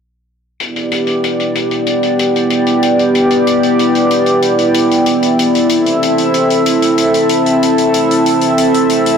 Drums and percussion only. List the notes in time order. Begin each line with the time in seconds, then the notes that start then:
0.60 closed hi-hat
0.76 closed hi-hat
0.92 closed hi-hat
1.07 closed hi-hat
1.24 closed hi-hat
1.40 closed hi-hat
1.55 closed hi-hat
1.71 closed hi-hat
1.86 closed hi-hat
2.03 closed hi-hat
2.19 closed hi-hat
2.36 closed hi-hat
2.50 closed hi-hat
2.66 closed hi-hat
2.83 closed hi-hat
2.99 closed hi-hat
3.15 closed hi-hat
3.30 closed hi-hat
3.47 closed hi-hat
3.63 closed hi-hat
3.79 closed hi-hat
3.95 closed hi-hat
4.11 closed hi-hat
4.26 closed hi-hat
4.42 closed hi-hat
4.59 closed hi-hat
4.74 closed hi-hat
4.91 closed hi-hat
5.06 closed hi-hat
5.23 closed hi-hat
5.39 closed hi-hat
5.55 closed hi-hat
5.69 closed hi-hat
5.86 closed hi-hat
6.03 closed hi-hat
6.18 closed hi-hat
6.34 closed hi-hat
6.50 closed hi-hat
6.66 closed hi-hat
6.82 closed hi-hat
6.98 closed hi-hat
7.14 closed hi-hat
7.29 closed hi-hat
7.46 closed hi-hat
7.63 closed hi-hat
7.78 closed hi-hat
7.94 closed hi-hat
8.11 closed hi-hat
8.26 closed hi-hat
8.41 closed hi-hat
8.58 closed hi-hat
8.74 closed hi-hat
8.89 closed hi-hat
9.06 closed hi-hat